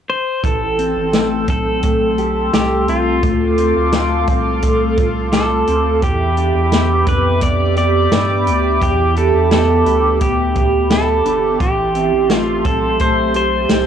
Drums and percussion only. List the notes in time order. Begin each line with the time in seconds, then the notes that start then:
0.44 kick, closed hi-hat
0.79 closed hi-hat
1.13 snare, closed hi-hat
1.48 kick, closed hi-hat
1.83 kick, closed hi-hat
2.18 closed hi-hat
2.53 snare, closed hi-hat
2.88 closed hi-hat
3.23 kick, closed hi-hat
3.58 closed hi-hat
3.92 snare, closed hi-hat
4.27 kick, closed hi-hat
4.62 kick, closed hi-hat
4.97 kick, closed hi-hat
5.33 snare, closed hi-hat
5.68 closed hi-hat
6.02 kick, closed hi-hat
6.37 closed hi-hat
6.72 snare, closed hi-hat
7.07 kick, closed hi-hat
7.41 kick, closed hi-hat
7.76 closed hi-hat
8.12 snare, closed hi-hat
8.47 closed hi-hat
8.81 kick, closed hi-hat
9.16 closed hi-hat
9.51 snare, closed hi-hat
9.86 closed hi-hat
10.21 kick, closed hi-hat
10.55 kick, closed hi-hat
10.90 snare, closed hi-hat
11.26 closed hi-hat
11.60 kick, closed hi-hat
11.95 closed hi-hat
12.30 snare, closed hi-hat
12.65 kick, closed hi-hat
12.99 kick, closed hi-hat
13.34 closed hi-hat
13.69 snare, closed hi-hat